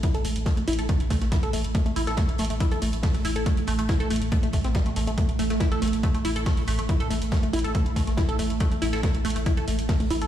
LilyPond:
<<
  \new Staff \with { instrumentName = "Synth arpeggio sound" } { \time 4/4 \tempo 4 = 140 e'16 a'16 a16 r16 a16 a16 e'16 a'16 a16 r16 a16 a16 e'16 a'16 a16 r16 | a16 a16 e'16 a'16 a16 r16 a16 a16 e'16 a'16 a16 r16 a16 a16 e'16 a'16 | a16 r16 a16 a16 e'16 a'16 a16 r16 a16 a16 a16 c'16 g16 a16 a16 a16 | a16 r16 a16 a16 e'16 a'16 a16 r16 a16 a16 e'16 a'16 a16 r16 a16 a16 |
e'16 a'16 a16 r16 a16 a16 e'16 a'16 a16 r16 a16 a16 e'16 a'16 a16 r16 | a16 a16 e'16 a'16 a16 r16 a16 a16 e'16 a'16 a16 r16 a16 a16 e'16 a'16 | }
  \new Staff \with { instrumentName = "Ambient pad" } { \clef bass \time 4/4 <a, a>1~ | <a, a>1~ | <a, a>1~ | <a, a>1~ |
<a, a>1~ | <a, a>1 | }
  \new Staff \with { instrumentName = "Sub bass" } { \clef bass \time 4/4 r16 a,,16 a,,16 a,,16 r16 a,,16 a,,16 a,,16 r16 a,,16 a,,16 a,,16 r16 a,,16 a,,16 a,,16 | r16 a,,16 a,,16 a,,16 r16 a,,16 a,,16 a,,16 r16 a,,16 a,,16 a,,16 r16 a,,16 a,,16 a,,16 | r16 a,,16 a,,16 a,,16 r16 a,,16 a,,16 a,,16 r16 a,,16 a,,16 a,,16 r16 a,,16 a,,16 a,,16 | r16 a,,16 a,,16 a,,16 r16 a,,16 a,,16 a,,16 r16 a,,16 a,,16 a,,16 r16 a,,16 a,,16 a,,16 |
r16 a,,16 a,,16 a,,16 r16 a,,16 a,,16 a,,16 r16 a,,16 a,,16 a,,16 r16 a,,16 a,,16 a,,16 | r16 a,,16 a,,16 a,,16 r16 a,,16 a,,16 a,,16 r16 a,,16 a,,16 a,,16 r16 a,,16 a,,16 a,,16 | }
  \new DrumStaff \with { instrumentName = "Drums" } \drummode { \time 4/4 <hh bd>16 hh16 <hh hho>16 hh16 <hh hho bd sn>16 hh16 <hh hho>32 hh32 hh16 <hh bd>16 hh16 <hh hho bd sn>16 <hh sn>16 <hh bd sn>16 hh16 <hh hho>16 hh16 | <hh bd>16 hh16 <hh hho>16 <hh sn>16 <hh bd sn>16 hh16 <hh hho sn>32 hh32 hh16 <hh bd>16 hh16 <hh hho>16 hh16 <hh hho bd sn>16 hh16 <hh hho>16 hh16 | <hh bd>16 hh16 <hh hho>16 hh16 <hh hho bd sn>16 hh16 <hh hho>32 hh32 hh16 <hh bd>16 hh16 <hh hho bd>16 <hh sn>16 <hh bd sn>16 hh16 <hh hho sn>16 hh16 | <hh bd>16 hh16 <hh hho>16 <hh sn>16 <hh bd sn>16 hh16 <hh hho sn>32 hh32 hh16 <hh bd>16 hh16 <hh hho>16 hh16 <hh hho bd sn>16 hh16 <hh hho>16 hh16 |
<hh bd>16 hh16 <hh hho>16 hh16 <hh hho bd sn>16 hh16 <hh hho>32 hh32 hh16 <hh bd>16 hh16 <hh hho bd sn>16 <hh sn>16 <hh bd sn>16 hh16 <hh hho>16 hh16 | <hh bd>16 hh16 <hh hho>16 <hh sn>16 <hh bd sn>16 hh16 <hh hho>32 hh32 hh16 <hh bd>16 hh16 <hh hho>16 hh16 <hh hho bd sn>16 hh16 <hh hho>16 hh16 | }
>>